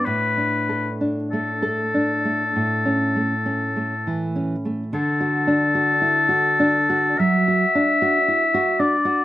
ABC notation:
X:1
M:4/4
L:1/16
Q:1/4=50
K:D
V:1 name="Oboe"
B3 z A8- A2 z2 | A8 e6 d2 |]
V:2 name="Nylon-string guitar"
A,, D A D A, A D A, A,, C A, C A, E, C A, | D, F D F E F D F F, F D F E F D F |]